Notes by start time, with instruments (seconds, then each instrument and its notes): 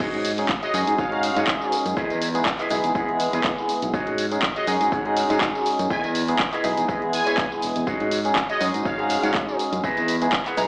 0.00 fingered electric bass G#2, tine electric piano G#3 C#4 D#4 F#4 G#4, clean electric guitar F#4 G#4 C#5 D#5, kick, crash, tambourine, shaker
0.13 fingered electric bass G#2, closed hi-hat
0.25 open hi-hat, tambourine, shaker
0.38 tine electric piano G#3 C#4 D#4 F#4 G#4, closed hi-hat, tambourine, shaker
0.49 kick, clap, tambourine, shaker
0.62 clean electric guitar F#4 G#4 C#5 D#5, analog polysynth D#5, closed hi-hat, tambourine
0.74 fingered electric bass F#2, tine electric piano G#3 C#4 D#4 F#4 G#4, open hi-hat, tambourine, shaker
0.87 fingered electric bass G#2, closed hi-hat, tambourine, shaker
0.98 fingered electric bass G#2, clean electric guitar F#4 G#4 C#5 D#5, analog polysynth F5, kick, tambourine, shaker
1.11 tine electric piano G#3 C#4 D#4 F#4 G#4, closed hi-hat
1.23 muted clean electric guitar stroke, open hi-hat, tambourine, shaker
1.36 fingered electric bass G#2, clean electric guitar F#4 G#4 C#5 D#5, closed hi-hat, tambourine, shaker
1.47 fingered electric bass G#2, kick, clap, tambourine, shaker
1.62 tambourine
1.72 muted clean electric guitar stroke, open hi-hat, tambourine, shaker
1.85 fingered electric bass F#2, closed hi-hat, tambourine, shaker
1.96 fingered electric bass E2, tine electric piano G#3 B3 G#4, clean electric guitar E4 G#4 B4 D#5, kick, tambourine, shaker
2.10 fingered electric bass E2, closed hi-hat, tambourine
2.22 open hi-hat, tambourine, shaker
2.34 tine electric piano G#3 B3 D#4 E4 G#4, closed hi-hat, tambourine, shaker
2.46 kick, clap, tambourine, shaker
2.59 clean electric guitar E4 G#4 B4 D#5, clap, closed hi-hat, tambourine
2.70 fingered electric bass B1, tine electric piano G#3 B3 D#4 E4 G#4, open hi-hat, tambourine, shaker
2.84 fingered electric bass E2, closed hi-hat, tambourine, shaker
2.95 fingered electric bass E2, tine electric piano G#3 B3 E4 G#4 D#5, clean electric guitar E4 G#4 B4 F#5, kick, tambourine, shaker
3.09 closed hi-hat
3.20 muted clean electric guitar stroke, open hi-hat, tambourine, shaker
3.33 fingered electric bass E2, clean electric guitar E4 G#4 B4 D#5, closed hi-hat, tambourine, shaker
3.44 fingered electric bass E2, kick, clap, tambourine, shaker
3.58 tambourine
3.69 muted clean electric guitar stroke, muted fingered electric bass stroke, open hi-hat, tambourine, shaker
3.82 fingered electric bass B1, closed hi-hat, tambourine, shaker
3.93 fingered electric bass G#2, tine electric piano G#3 C#4 D#4 F#4 G#4, clean electric guitar F#4 G#4 C#5 D#5, kick, tambourine, shaker
4.07 fingered electric bass G#2, closed hi-hat
4.18 open hi-hat, tambourine, shaker
4.31 tine electric piano G#3 C#4 D#4 F#4 G#4, closed hi-hat, tambourine, shaker
4.42 kick, clap, tambourine, shaker
4.56 clean electric guitar F#4 G#4 C#5 D#5, analog polysynth D#5, closed hi-hat, tambourine
4.67 fingered electric bass F#2, tine electric piano G#3 C#4 D#4 F#4 G#4, open hi-hat, tambourine, shaker
4.81 fingered electric bass G#2, closed hi-hat, tambourine, shaker
4.92 fingered electric bass G#2, clean electric guitar F#4 G#4 C#5 F#5, kick, tambourine, shaker
5.05 tine electric piano G#3 C#4 D#4 F#4 G#4, closed hi-hat
5.16 muted clean electric guitar stroke, open hi-hat, tambourine, shaker
5.30 fingered electric bass G#2, clean electric guitar F#4 G#4 C#5 D#5, closed hi-hat, tambourine, shaker
5.41 fingered electric bass G#2, kick, clap, tambourine, shaker
5.55 tambourine
5.66 muted clean electric guitar stroke, open hi-hat, tambourine, shaker
5.79 fingered electric bass F#2, closed hi-hat, tambourine, shaker
5.90 fingered electric bass E2, tine electric piano G#3 B3 D#4 E4 G#4, clean electric guitar E4 G#4 B4 D#5, analog polysynth G#5, kick, tambourine, shaker
6.04 fingered electric bass E2, closed hi-hat, tambourine
6.15 open hi-hat, tambourine, shaker
6.28 tine electric piano G#3 B3 D#4 E4 G#4, closed hi-hat, tambourine, shaker
6.39 kick, clap, tambourine, shaker
6.53 clean electric guitar E4 G#4 B4 D#5, clap, closed hi-hat, tambourine
6.64 fingered electric bass B1, tine electric piano G#3 B3 D#4 E4 G#4, open hi-hat, tambourine, shaker
6.77 fingered electric bass E2, closed hi-hat, tambourine, shaker
6.88 fingered electric bass E2, tine electric piano G#3 B3 E4 G#4 D#5, clean electric guitar E4 G#4 B4 D#5, kick, tambourine, shaker
7.02 closed hi-hat
7.13 analog polysynth G#5, muted clean electric guitar stroke, open hi-hat, tambourine, shaker
7.26 clean electric guitar E4 G#4 B4 C#5, muted fingered electric bass stroke, closed hi-hat, tambourine, shaker
7.38 fingered electric bass B1, kick, clap, tambourine, shaker
7.52 tambourine
7.62 fingered electric bass E1, muted clean electric guitar stroke, open hi-hat, tambourine, shaker
7.76 fingered electric bass E2, closed hi-hat, tambourine, shaker
7.87 fingered electric bass G#2, tine electric piano G#3 C#4 D#4 F#4 G#4, clean electric guitar F#4 G#4 C#5 D#5, kick, tambourine, shaker
8.00 fingered electric bass G#2, closed hi-hat
8.11 open hi-hat, tambourine, shaker
8.25 tine electric piano G#3 C#4 D#4 F#4 G#4, closed hi-hat, tambourine, shaker
8.36 kick, clap, tambourine, shaker
8.49 clean electric guitar F#4 G#4 C#5 D#5, analog polysynth D#5, closed hi-hat, tambourine
8.60 fingered electric bass F#2, tine electric piano G#3 C#4 D#4 F#4 G#4, open hi-hat, tambourine, shaker
8.74 fingered electric bass G#2, closed hi-hat, tambourine, shaker
8.85 fingered electric bass G#2, clean electric guitar F#4 G#4 C#5 F5, analog polysynth F5, kick, tambourine, shaker
8.98 tine electric piano G#3 C#4 D#4 F#4 G#4, closed hi-hat
9.09 muted clean electric guitar stroke, open hi-hat, tambourine, shaker
9.23 fingered electric bass G#2, clean electric guitar F#4 G#4 C#5 F#5, closed hi-hat, tambourine, shaker
9.34 fingered electric bass G#2, kick, clap, tambourine, shaker
9.49 tambourine
9.59 muted clean electric guitar stroke, open hi-hat, tambourine, shaker
9.73 fingered electric bass F#2, closed hi-hat, tambourine, shaker
9.83 fingered electric bass E2, tine electric piano G#3 B3 D#4 E4 G#4, clean electric guitar E4 G#4 B4 D#5, kick, tambourine, shaker
9.97 fingered electric bass E2, closed hi-hat, tambourine
10.08 open hi-hat, tambourine, shaker
10.22 tine electric piano G#3 B3 D#4 E4 G#4, closed hi-hat, tambourine, shaker
10.33 kick, clap, tambourine, shaker
10.46 clean electric guitar E4 G#4 B4 F#5, clap, closed hi-hat, tambourine
10.57 fingered electric bass B1, tine electric piano G#3 B3 D#4 E4 G#4, clean electric guitar A#5, open hi-hat, tambourine, shaker